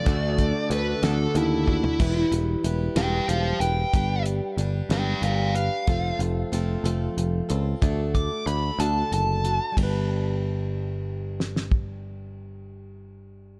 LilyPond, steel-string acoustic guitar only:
\new Staff \with { instrumentName = "Steel-string acoustic guitar" } { \time 6/8 \key g \major \tempo 4. = 62 <d a d' fis' a'>4 <a d' fis' a'>8 <d a d' fis' a'>4 <d' fis' a'>8 | <e g e' g' b'>4 <g e' g' b'>8 <e g g'>4 <e' g' b'>8 | <g d' g' b'>4 <g d' g' b'>8 <g d' g' b'>4 <d' g' b'>8 | <f a c' f' a'>4 <a c' f' a'>8 <f a c' f' a'>4 <c' f' a'>8 |
<d a d' fis' a'>4 <a d' fis' a'>8 <d a d' fis' a'>4 <d' fis' a'>8 | <g d' g' b'>2.~ | <g d' g' b'>2. | }